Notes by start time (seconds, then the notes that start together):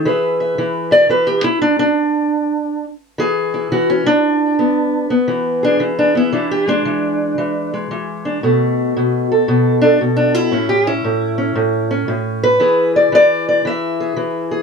0.05 E3 G#4 B4 E5
0.40 E5
0.58 E3
0.91 D5 E5
1.09 E3 B4
1.27 G4
1.44 E4
1.62 D4
1.79 D4
3.18 E3 G#4
3.54 E4
3.72 E3 F#4
3.90 C#4
4.06 D4
4.59 B3
5.10 B3
5.28 E3
5.63 D4 G#4
5.80 E3
5.99 D4
6.15 B3 E4
6.32 E3 D4
6.51 G4
6.68 G#3 D4
6.85 E3
7.38 E3
7.74 G#3
7.91 E3
8.25 D4
8.43 B2 A3
8.97 B2
9.32 A4
9.48 B2
9.82 D4 A4
10.01 B2
10.17 D4
10.35 E4
10.52 A2 C#4
10.69 G4
10.87 C#4 E4
11.04 A2
11.38 C#4
11.55 A2
11.91 C#4
12.08 A2
12.43 B4
12.60 E3 E4 G#4
12.96 D5
13.12 E3 D5
13.49 D5
13.65 E3 E5
14.00 G#4
14.17 E3
14.51 G#4